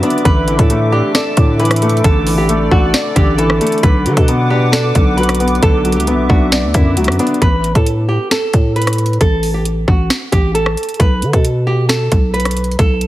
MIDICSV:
0, 0, Header, 1, 6, 480
1, 0, Start_track
1, 0, Tempo, 447761
1, 270, Time_signature, 4, 2, 24, 8
1, 14011, End_track
2, 0, Start_track
2, 0, Title_t, "Analog synth pad"
2, 0, Program_c, 0, 89
2, 0, Note_on_c, 0, 71, 81
2, 0, Note_on_c, 0, 76, 78
2, 0, Note_on_c, 0, 86, 88
2, 233, Note_off_c, 0, 71, 0
2, 271, Note_on_c, 0, 69, 82
2, 2153, Note_off_c, 0, 76, 0
2, 2191, Note_on_c, 0, 74, 74
2, 4069, Note_off_c, 0, 86, 0
2, 4072, Note_off_c, 0, 69, 0
2, 4092, Note_off_c, 0, 74, 0
2, 4108, Note_on_c, 0, 86, 87
2, 4109, Note_on_c, 0, 71, 84
2, 4109, Note_on_c, 0, 78, 74
2, 6010, Note_off_c, 0, 78, 0
2, 6032, Note_on_c, 0, 76, 74
2, 7911, Note_off_c, 0, 71, 0
2, 7911, Note_off_c, 0, 86, 0
2, 7932, Note_off_c, 0, 76, 0
2, 14011, End_track
3, 0, Start_track
3, 0, Title_t, "Nylon-string guitar"
3, 0, Program_c, 1, 24
3, 33, Note_on_c, 1, 62, 90
3, 254, Note_off_c, 1, 62, 0
3, 269, Note_on_c, 1, 71, 99
3, 608, Note_off_c, 1, 71, 0
3, 640, Note_on_c, 1, 69, 75
3, 747, Note_off_c, 1, 69, 0
3, 990, Note_on_c, 1, 67, 83
3, 1213, Note_off_c, 1, 67, 0
3, 1238, Note_on_c, 1, 69, 87
3, 1686, Note_off_c, 1, 69, 0
3, 1712, Note_on_c, 1, 71, 85
3, 2163, Note_off_c, 1, 71, 0
3, 2192, Note_on_c, 1, 69, 108
3, 2529, Note_off_c, 1, 69, 0
3, 2549, Note_on_c, 1, 67, 77
3, 2661, Note_off_c, 1, 67, 0
3, 2915, Note_on_c, 1, 66, 86
3, 3135, Note_off_c, 1, 66, 0
3, 3385, Note_on_c, 1, 67, 92
3, 3610, Note_off_c, 1, 67, 0
3, 3623, Note_on_c, 1, 69, 83
3, 4078, Note_off_c, 1, 69, 0
3, 4106, Note_on_c, 1, 71, 101
3, 4446, Note_off_c, 1, 71, 0
3, 4472, Note_on_c, 1, 69, 79
3, 4583, Note_off_c, 1, 69, 0
3, 4828, Note_on_c, 1, 67, 85
3, 5052, Note_off_c, 1, 67, 0
3, 5063, Note_on_c, 1, 69, 85
3, 5518, Note_off_c, 1, 69, 0
3, 5545, Note_on_c, 1, 71, 82
3, 5999, Note_off_c, 1, 71, 0
3, 6037, Note_on_c, 1, 69, 117
3, 6372, Note_off_c, 1, 69, 0
3, 6392, Note_on_c, 1, 67, 82
3, 6503, Note_off_c, 1, 67, 0
3, 6745, Note_on_c, 1, 66, 89
3, 6970, Note_off_c, 1, 66, 0
3, 7226, Note_on_c, 1, 64, 83
3, 7679, Note_off_c, 1, 64, 0
3, 7715, Note_on_c, 1, 62, 90
3, 7935, Note_off_c, 1, 62, 0
3, 7951, Note_on_c, 1, 71, 98
3, 8289, Note_off_c, 1, 71, 0
3, 8321, Note_on_c, 1, 69, 74
3, 8428, Note_off_c, 1, 69, 0
3, 8668, Note_on_c, 1, 67, 77
3, 8892, Note_off_c, 1, 67, 0
3, 8915, Note_on_c, 1, 69, 88
3, 9364, Note_off_c, 1, 69, 0
3, 9391, Note_on_c, 1, 71, 85
3, 9842, Note_off_c, 1, 71, 0
3, 9871, Note_on_c, 1, 69, 107
3, 10209, Note_off_c, 1, 69, 0
3, 10228, Note_on_c, 1, 67, 75
3, 10341, Note_off_c, 1, 67, 0
3, 10594, Note_on_c, 1, 66, 81
3, 10815, Note_off_c, 1, 66, 0
3, 11065, Note_on_c, 1, 67, 86
3, 11290, Note_off_c, 1, 67, 0
3, 11306, Note_on_c, 1, 69, 77
3, 11759, Note_off_c, 1, 69, 0
3, 11787, Note_on_c, 1, 71, 100
3, 12127, Note_off_c, 1, 71, 0
3, 12152, Note_on_c, 1, 69, 74
3, 12263, Note_off_c, 1, 69, 0
3, 12509, Note_on_c, 1, 67, 82
3, 12732, Note_off_c, 1, 67, 0
3, 12744, Note_on_c, 1, 69, 83
3, 13198, Note_off_c, 1, 69, 0
3, 13224, Note_on_c, 1, 71, 81
3, 13679, Note_off_c, 1, 71, 0
3, 13715, Note_on_c, 1, 69, 110
3, 14011, Note_off_c, 1, 69, 0
3, 14011, End_track
4, 0, Start_track
4, 0, Title_t, "Felt piano"
4, 0, Program_c, 2, 0
4, 0, Control_c, 2, 64, 127
4, 0, Note_on_c, 2, 50, 77
4, 0, Note_on_c, 2, 54, 90
4, 0, Note_on_c, 2, 59, 93
4, 0, Note_on_c, 2, 62, 86
4, 0, Note_on_c, 2, 74, 112
4, 31, Note_off_c, 2, 59, 0
4, 31, Note_on_c, 2, 59, 87
4, 255, Note_off_c, 2, 50, 0
4, 270, Note_off_c, 2, 74, 0
4, 271, Note_off_c, 2, 54, 0
4, 271, Note_off_c, 2, 59, 0
4, 271, Note_off_c, 2, 62, 0
4, 272, Note_on_c, 2, 50, 103
4, 283, Control_c, 2, 64, 0
4, 495, Control_c, 2, 64, 127
4, 512, Note_on_c, 2, 52, 81
4, 751, Note_on_c, 2, 57, 86
4, 990, Note_on_c, 2, 62, 96
4, 1231, Note_on_c, 2, 74, 104
4, 1455, Note_off_c, 2, 50, 0
4, 1471, Note_on_c, 2, 50, 79
4, 1696, Note_off_c, 2, 52, 0
4, 1712, Note_on_c, 2, 52, 94
4, 1936, Note_off_c, 2, 57, 0
4, 1952, Note_on_c, 2, 57, 93
4, 2175, Note_off_c, 2, 50, 0
4, 2190, Note_off_c, 2, 62, 0
4, 2191, Note_on_c, 2, 50, 94
4, 2414, Note_off_c, 2, 52, 0
4, 2430, Note_on_c, 2, 52, 79
4, 2431, Note_off_c, 2, 74, 0
4, 2656, Note_off_c, 2, 57, 0
4, 2672, Note_on_c, 2, 57, 94
4, 2912, Note_on_c, 2, 62, 85
4, 3151, Note_on_c, 2, 74, 101
4, 3375, Note_off_c, 2, 50, 0
4, 3391, Note_on_c, 2, 50, 85
4, 3614, Note_off_c, 2, 52, 0
4, 3631, Note_on_c, 2, 52, 90
4, 3852, Note_off_c, 2, 57, 0
4, 3868, Note_on_c, 2, 57, 96
4, 4094, Note_off_c, 2, 50, 0
4, 4109, Note_off_c, 2, 57, 0
4, 4110, Note_on_c, 2, 50, 100
4, 4111, Note_off_c, 2, 52, 0
4, 4111, Note_off_c, 2, 62, 0
4, 4111, Note_off_c, 2, 74, 0
4, 4125, Control_c, 2, 64, 0
4, 4336, Control_c, 2, 64, 127
4, 4351, Note_on_c, 2, 54, 86
4, 4592, Note_on_c, 2, 59, 84
4, 4832, Note_on_c, 2, 62, 88
4, 5069, Note_on_c, 2, 74, 106
4, 5296, Note_off_c, 2, 50, 0
4, 5312, Note_on_c, 2, 50, 77
4, 5533, Note_off_c, 2, 54, 0
4, 5550, Note_on_c, 2, 54, 90
4, 5774, Note_off_c, 2, 59, 0
4, 5790, Note_on_c, 2, 59, 86
4, 6013, Note_off_c, 2, 50, 0
4, 6029, Note_on_c, 2, 50, 100
4, 6031, Note_off_c, 2, 62, 0
4, 6254, Note_off_c, 2, 54, 0
4, 6270, Note_off_c, 2, 74, 0
4, 6270, Note_on_c, 2, 54, 82
4, 6494, Note_off_c, 2, 59, 0
4, 6510, Note_on_c, 2, 59, 91
4, 6752, Note_on_c, 2, 62, 84
4, 6991, Note_on_c, 2, 74, 110
4, 7215, Note_off_c, 2, 50, 0
4, 7231, Note_on_c, 2, 50, 79
4, 7456, Note_off_c, 2, 54, 0
4, 7472, Note_on_c, 2, 54, 84
4, 7695, Note_off_c, 2, 59, 0
4, 7711, Note_on_c, 2, 59, 88
4, 7951, Note_off_c, 2, 50, 0
4, 7951, Note_off_c, 2, 54, 0
4, 7951, Note_off_c, 2, 59, 0
4, 7951, Note_off_c, 2, 62, 0
4, 7951, Note_off_c, 2, 74, 0
4, 7967, Control_c, 2, 64, 0
4, 8129, Control_c, 2, 64, 127
4, 11803, Control_c, 2, 64, 0
4, 14011, End_track
5, 0, Start_track
5, 0, Title_t, "808-style bass"
5, 0, Program_c, 3, 38
5, 271, Note_on_c, 3, 33, 113
5, 617, Note_off_c, 3, 33, 0
5, 631, Note_on_c, 3, 45, 103
5, 1092, Note_off_c, 3, 45, 0
5, 1471, Note_on_c, 3, 45, 110
5, 2162, Note_off_c, 3, 45, 0
5, 2191, Note_on_c, 3, 33, 112
5, 2882, Note_off_c, 3, 33, 0
5, 2910, Note_on_c, 3, 33, 102
5, 3141, Note_off_c, 3, 33, 0
5, 3390, Note_on_c, 3, 33, 111
5, 3851, Note_off_c, 3, 33, 0
5, 4110, Note_on_c, 3, 35, 108
5, 4350, Note_on_c, 3, 50, 100
5, 4366, Note_off_c, 3, 35, 0
5, 4464, Note_off_c, 3, 50, 0
5, 4470, Note_on_c, 3, 47, 99
5, 5276, Note_off_c, 3, 47, 0
5, 5310, Note_on_c, 3, 35, 112
5, 6002, Note_off_c, 3, 35, 0
5, 6031, Note_on_c, 3, 35, 107
5, 6391, Note_on_c, 3, 37, 95
5, 6407, Note_off_c, 3, 35, 0
5, 6570, Note_on_c, 3, 35, 98
5, 6586, Note_off_c, 3, 37, 0
5, 6741, Note_off_c, 3, 35, 0
5, 6750, Note_on_c, 3, 35, 105
5, 7110, Note_on_c, 3, 38, 100
5, 7126, Note_off_c, 3, 35, 0
5, 7224, Note_off_c, 3, 38, 0
5, 7230, Note_on_c, 3, 42, 111
5, 7470, Note_on_c, 3, 37, 101
5, 7486, Note_off_c, 3, 42, 0
5, 7590, Note_on_c, 3, 42, 100
5, 7606, Note_off_c, 3, 37, 0
5, 7704, Note_off_c, 3, 42, 0
5, 7951, Note_on_c, 3, 33, 106
5, 8296, Note_off_c, 3, 33, 0
5, 8311, Note_on_c, 3, 45, 104
5, 8772, Note_off_c, 3, 45, 0
5, 9151, Note_on_c, 3, 45, 106
5, 9842, Note_off_c, 3, 45, 0
5, 9870, Note_on_c, 3, 33, 108
5, 10562, Note_off_c, 3, 33, 0
5, 10589, Note_on_c, 3, 33, 102
5, 10820, Note_off_c, 3, 33, 0
5, 11070, Note_on_c, 3, 33, 106
5, 11531, Note_off_c, 3, 33, 0
5, 11790, Note_on_c, 3, 35, 109
5, 12031, Note_on_c, 3, 50, 102
5, 12047, Note_off_c, 3, 35, 0
5, 12145, Note_off_c, 3, 50, 0
5, 12149, Note_on_c, 3, 47, 102
5, 12956, Note_off_c, 3, 47, 0
5, 12990, Note_on_c, 3, 35, 103
5, 13682, Note_off_c, 3, 35, 0
5, 13710, Note_on_c, 3, 35, 108
5, 14011, Note_off_c, 3, 35, 0
5, 14011, End_track
6, 0, Start_track
6, 0, Title_t, "Drums"
6, 31, Note_on_c, 9, 42, 75
6, 111, Note_off_c, 9, 42, 0
6, 111, Note_on_c, 9, 42, 58
6, 191, Note_off_c, 9, 42, 0
6, 191, Note_on_c, 9, 42, 45
6, 271, Note_off_c, 9, 42, 0
6, 271, Note_on_c, 9, 36, 116
6, 271, Note_on_c, 9, 42, 75
6, 378, Note_off_c, 9, 36, 0
6, 378, Note_off_c, 9, 42, 0
6, 511, Note_on_c, 9, 42, 69
6, 618, Note_off_c, 9, 42, 0
6, 631, Note_on_c, 9, 36, 92
6, 631, Note_on_c, 9, 42, 69
6, 738, Note_off_c, 9, 36, 0
6, 738, Note_off_c, 9, 42, 0
6, 750, Note_on_c, 9, 42, 90
6, 857, Note_off_c, 9, 42, 0
6, 1230, Note_on_c, 9, 37, 74
6, 1230, Note_on_c, 9, 38, 124
6, 1232, Note_on_c, 9, 42, 78
6, 1338, Note_off_c, 9, 37, 0
6, 1338, Note_off_c, 9, 38, 0
6, 1339, Note_off_c, 9, 42, 0
6, 1468, Note_on_c, 9, 42, 93
6, 1471, Note_on_c, 9, 36, 101
6, 1575, Note_off_c, 9, 42, 0
6, 1578, Note_off_c, 9, 36, 0
6, 1710, Note_on_c, 9, 42, 54
6, 1770, Note_off_c, 9, 42, 0
6, 1770, Note_on_c, 9, 42, 65
6, 1830, Note_on_c, 9, 37, 107
6, 1831, Note_off_c, 9, 42, 0
6, 1831, Note_on_c, 9, 42, 76
6, 1890, Note_off_c, 9, 42, 0
6, 1890, Note_on_c, 9, 42, 91
6, 1937, Note_off_c, 9, 37, 0
6, 1951, Note_off_c, 9, 42, 0
6, 1951, Note_on_c, 9, 42, 73
6, 2031, Note_off_c, 9, 42, 0
6, 2031, Note_on_c, 9, 42, 59
6, 2110, Note_off_c, 9, 42, 0
6, 2110, Note_on_c, 9, 42, 45
6, 2190, Note_off_c, 9, 42, 0
6, 2190, Note_on_c, 9, 42, 79
6, 2191, Note_on_c, 9, 36, 121
6, 2297, Note_off_c, 9, 42, 0
6, 2298, Note_off_c, 9, 36, 0
6, 2429, Note_on_c, 9, 46, 87
6, 2536, Note_off_c, 9, 46, 0
6, 2670, Note_on_c, 9, 42, 91
6, 2777, Note_off_c, 9, 42, 0
6, 2910, Note_on_c, 9, 36, 93
6, 3017, Note_off_c, 9, 36, 0
6, 3151, Note_on_c, 9, 37, 70
6, 3151, Note_on_c, 9, 38, 120
6, 3152, Note_on_c, 9, 42, 75
6, 3258, Note_off_c, 9, 37, 0
6, 3258, Note_off_c, 9, 38, 0
6, 3259, Note_off_c, 9, 42, 0
6, 3388, Note_on_c, 9, 42, 92
6, 3390, Note_on_c, 9, 36, 103
6, 3495, Note_off_c, 9, 42, 0
6, 3498, Note_off_c, 9, 36, 0
6, 3630, Note_on_c, 9, 42, 85
6, 3737, Note_off_c, 9, 42, 0
6, 3750, Note_on_c, 9, 37, 105
6, 3857, Note_off_c, 9, 37, 0
6, 3870, Note_on_c, 9, 42, 72
6, 3930, Note_off_c, 9, 42, 0
6, 3930, Note_on_c, 9, 42, 64
6, 3990, Note_off_c, 9, 42, 0
6, 3990, Note_on_c, 9, 42, 54
6, 4050, Note_off_c, 9, 42, 0
6, 4050, Note_on_c, 9, 42, 44
6, 4109, Note_off_c, 9, 42, 0
6, 4109, Note_on_c, 9, 42, 78
6, 4110, Note_on_c, 9, 36, 116
6, 4216, Note_off_c, 9, 42, 0
6, 4217, Note_off_c, 9, 36, 0
6, 4350, Note_on_c, 9, 42, 68
6, 4457, Note_off_c, 9, 42, 0
6, 4470, Note_on_c, 9, 36, 95
6, 4470, Note_on_c, 9, 42, 67
6, 4577, Note_off_c, 9, 36, 0
6, 4577, Note_off_c, 9, 42, 0
6, 4589, Note_on_c, 9, 42, 86
6, 4696, Note_off_c, 9, 42, 0
6, 5071, Note_on_c, 9, 37, 71
6, 5071, Note_on_c, 9, 38, 125
6, 5072, Note_on_c, 9, 42, 77
6, 5178, Note_off_c, 9, 37, 0
6, 5178, Note_off_c, 9, 38, 0
6, 5179, Note_off_c, 9, 42, 0
6, 5308, Note_on_c, 9, 42, 89
6, 5310, Note_on_c, 9, 36, 101
6, 5415, Note_off_c, 9, 42, 0
6, 5418, Note_off_c, 9, 36, 0
6, 5550, Note_on_c, 9, 42, 53
6, 5610, Note_off_c, 9, 42, 0
6, 5610, Note_on_c, 9, 42, 66
6, 5670, Note_on_c, 9, 37, 108
6, 5671, Note_off_c, 9, 42, 0
6, 5671, Note_on_c, 9, 42, 80
6, 5730, Note_off_c, 9, 42, 0
6, 5730, Note_on_c, 9, 42, 91
6, 5777, Note_off_c, 9, 37, 0
6, 5790, Note_off_c, 9, 42, 0
6, 5790, Note_on_c, 9, 42, 70
6, 5870, Note_off_c, 9, 42, 0
6, 5870, Note_on_c, 9, 42, 57
6, 5950, Note_off_c, 9, 42, 0
6, 5950, Note_on_c, 9, 42, 44
6, 6030, Note_off_c, 9, 42, 0
6, 6030, Note_on_c, 9, 42, 76
6, 6031, Note_on_c, 9, 36, 113
6, 6137, Note_off_c, 9, 42, 0
6, 6138, Note_off_c, 9, 36, 0
6, 6270, Note_on_c, 9, 46, 88
6, 6271, Note_on_c, 9, 42, 50
6, 6351, Note_off_c, 9, 42, 0
6, 6351, Note_on_c, 9, 42, 67
6, 6377, Note_off_c, 9, 46, 0
6, 6431, Note_off_c, 9, 42, 0
6, 6431, Note_on_c, 9, 42, 82
6, 6510, Note_off_c, 9, 42, 0
6, 6510, Note_on_c, 9, 42, 88
6, 6617, Note_off_c, 9, 42, 0
6, 6750, Note_on_c, 9, 36, 98
6, 6858, Note_off_c, 9, 36, 0
6, 6990, Note_on_c, 9, 38, 126
6, 6992, Note_on_c, 9, 42, 78
6, 7098, Note_off_c, 9, 38, 0
6, 7099, Note_off_c, 9, 42, 0
6, 7228, Note_on_c, 9, 42, 93
6, 7231, Note_on_c, 9, 36, 102
6, 7335, Note_off_c, 9, 42, 0
6, 7338, Note_off_c, 9, 36, 0
6, 7470, Note_on_c, 9, 42, 85
6, 7550, Note_off_c, 9, 42, 0
6, 7550, Note_on_c, 9, 42, 66
6, 7590, Note_on_c, 9, 37, 105
6, 7631, Note_off_c, 9, 42, 0
6, 7631, Note_on_c, 9, 42, 53
6, 7697, Note_off_c, 9, 37, 0
6, 7711, Note_off_c, 9, 42, 0
6, 7711, Note_on_c, 9, 42, 73
6, 7790, Note_off_c, 9, 42, 0
6, 7790, Note_on_c, 9, 42, 59
6, 7871, Note_off_c, 9, 42, 0
6, 7871, Note_on_c, 9, 42, 44
6, 7951, Note_off_c, 9, 42, 0
6, 7951, Note_on_c, 9, 36, 109
6, 7951, Note_on_c, 9, 42, 77
6, 8058, Note_off_c, 9, 36, 0
6, 8058, Note_off_c, 9, 42, 0
6, 8191, Note_on_c, 9, 42, 67
6, 8298, Note_off_c, 9, 42, 0
6, 8310, Note_on_c, 9, 36, 90
6, 8311, Note_on_c, 9, 42, 66
6, 8418, Note_off_c, 9, 36, 0
6, 8418, Note_off_c, 9, 42, 0
6, 8431, Note_on_c, 9, 42, 82
6, 8538, Note_off_c, 9, 42, 0
6, 8911, Note_on_c, 9, 37, 71
6, 8911, Note_on_c, 9, 38, 117
6, 8912, Note_on_c, 9, 42, 77
6, 9018, Note_off_c, 9, 37, 0
6, 9018, Note_off_c, 9, 38, 0
6, 9019, Note_off_c, 9, 42, 0
6, 9149, Note_on_c, 9, 42, 90
6, 9151, Note_on_c, 9, 36, 98
6, 9256, Note_off_c, 9, 42, 0
6, 9258, Note_off_c, 9, 36, 0
6, 9391, Note_on_c, 9, 42, 52
6, 9451, Note_off_c, 9, 42, 0
6, 9451, Note_on_c, 9, 42, 64
6, 9511, Note_off_c, 9, 42, 0
6, 9511, Note_on_c, 9, 37, 100
6, 9511, Note_on_c, 9, 42, 77
6, 9571, Note_off_c, 9, 42, 0
6, 9571, Note_on_c, 9, 42, 89
6, 9618, Note_off_c, 9, 37, 0
6, 9631, Note_off_c, 9, 42, 0
6, 9631, Note_on_c, 9, 42, 72
6, 9710, Note_off_c, 9, 42, 0
6, 9710, Note_on_c, 9, 42, 57
6, 9790, Note_off_c, 9, 42, 0
6, 9790, Note_on_c, 9, 42, 44
6, 9870, Note_off_c, 9, 42, 0
6, 9870, Note_on_c, 9, 36, 109
6, 9870, Note_on_c, 9, 42, 76
6, 9977, Note_off_c, 9, 36, 0
6, 9977, Note_off_c, 9, 42, 0
6, 10109, Note_on_c, 9, 46, 84
6, 10216, Note_off_c, 9, 46, 0
6, 10349, Note_on_c, 9, 42, 86
6, 10457, Note_off_c, 9, 42, 0
6, 10590, Note_on_c, 9, 36, 93
6, 10697, Note_off_c, 9, 36, 0
6, 10830, Note_on_c, 9, 37, 72
6, 10830, Note_on_c, 9, 38, 120
6, 10831, Note_on_c, 9, 42, 75
6, 10937, Note_off_c, 9, 37, 0
6, 10937, Note_off_c, 9, 38, 0
6, 10938, Note_off_c, 9, 42, 0
6, 11068, Note_on_c, 9, 42, 90
6, 11070, Note_on_c, 9, 36, 96
6, 11175, Note_off_c, 9, 42, 0
6, 11178, Note_off_c, 9, 36, 0
6, 11310, Note_on_c, 9, 42, 83
6, 11417, Note_off_c, 9, 42, 0
6, 11429, Note_on_c, 9, 37, 103
6, 11536, Note_off_c, 9, 37, 0
6, 11550, Note_on_c, 9, 42, 71
6, 11610, Note_off_c, 9, 42, 0
6, 11610, Note_on_c, 9, 42, 63
6, 11670, Note_off_c, 9, 42, 0
6, 11670, Note_on_c, 9, 42, 53
6, 11730, Note_off_c, 9, 42, 0
6, 11730, Note_on_c, 9, 42, 44
6, 11790, Note_off_c, 9, 42, 0
6, 11790, Note_on_c, 9, 36, 114
6, 11790, Note_on_c, 9, 42, 78
6, 11897, Note_off_c, 9, 36, 0
6, 11897, Note_off_c, 9, 42, 0
6, 12030, Note_on_c, 9, 42, 66
6, 12137, Note_off_c, 9, 42, 0
6, 12150, Note_on_c, 9, 36, 92
6, 12150, Note_on_c, 9, 42, 67
6, 12257, Note_off_c, 9, 36, 0
6, 12257, Note_off_c, 9, 42, 0
6, 12270, Note_on_c, 9, 42, 86
6, 12377, Note_off_c, 9, 42, 0
6, 12750, Note_on_c, 9, 37, 73
6, 12750, Note_on_c, 9, 38, 121
6, 12751, Note_on_c, 9, 42, 77
6, 12857, Note_off_c, 9, 37, 0
6, 12857, Note_off_c, 9, 38, 0
6, 12859, Note_off_c, 9, 42, 0
6, 12989, Note_on_c, 9, 42, 91
6, 12990, Note_on_c, 9, 36, 100
6, 13096, Note_off_c, 9, 42, 0
6, 13098, Note_off_c, 9, 36, 0
6, 13231, Note_on_c, 9, 42, 52
6, 13290, Note_off_c, 9, 42, 0
6, 13290, Note_on_c, 9, 42, 66
6, 13350, Note_on_c, 9, 37, 99
6, 13351, Note_off_c, 9, 42, 0
6, 13351, Note_on_c, 9, 42, 77
6, 13410, Note_off_c, 9, 42, 0
6, 13410, Note_on_c, 9, 42, 90
6, 13457, Note_off_c, 9, 37, 0
6, 13471, Note_off_c, 9, 42, 0
6, 13471, Note_on_c, 9, 42, 70
6, 13551, Note_off_c, 9, 42, 0
6, 13551, Note_on_c, 9, 42, 55
6, 13630, Note_off_c, 9, 42, 0
6, 13630, Note_on_c, 9, 42, 43
6, 13710, Note_off_c, 9, 42, 0
6, 13710, Note_on_c, 9, 36, 114
6, 13710, Note_on_c, 9, 42, 75
6, 13817, Note_off_c, 9, 36, 0
6, 13817, Note_off_c, 9, 42, 0
6, 13949, Note_on_c, 9, 46, 88
6, 13950, Note_on_c, 9, 42, 49
6, 14011, Note_off_c, 9, 42, 0
6, 14011, Note_off_c, 9, 46, 0
6, 14011, End_track
0, 0, End_of_file